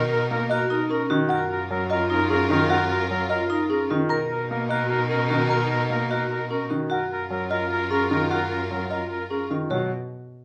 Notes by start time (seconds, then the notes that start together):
Already playing: B2 D#4 A#4 A#5
0.11 A#4
0.31 A#3 A#4
0.50 F#4 A#4 D#5
0.70 D#4 A#4
0.90 C#4 A#4
1.10 D#3 F#4
1.29 F#2 F4 F#4 A#4 F#5
1.51 A#4
1.71 F#3 A#4
1.90 F4 A#4 D#5
2.10 D#4 A#4
2.30 C#4 G#4 A#4
2.50 D#3 F4 A#4
2.70 F#4 A#4 F#5
2.91 A#4
3.11 F#3 A#4
3.30 F4 A#4 D#5
3.50 D#4 A#4
3.70 C#4 G#4 A#4
3.90 D#3 F4
4.09 B2 D#4 A#4 A#5
4.31 A#4
4.51 A#3 A#4
4.69 F#4 A#4 D#5
4.90 A#4
5.09 C#4 A#4
5.30 D#3 F#4 A#4
5.50 A#4 A#5
5.71 A#4
5.90 A#3 A#4
6.10 F#4 A#4 D#5
6.32 A#4
6.51 C#4 A#4
6.70 D#3 F#4
6.90 F#2 F4 F#4 A#4 F#5
7.12 A#4
7.30 F#3 A#4
7.50 F4 A#4 D#5
7.72 A#4
7.90 C#4 G#4 A#4
8.11 D#3 F4 A#4
8.30 F#4 A#4 F#5
8.51 A#4
8.71 F#3 A#4
8.90 F4 A#4 D#5
9.11 A#4
9.30 C#4 G#4 A#4
9.51 D#3 F4
9.70 B2 F#3 F#4 C#5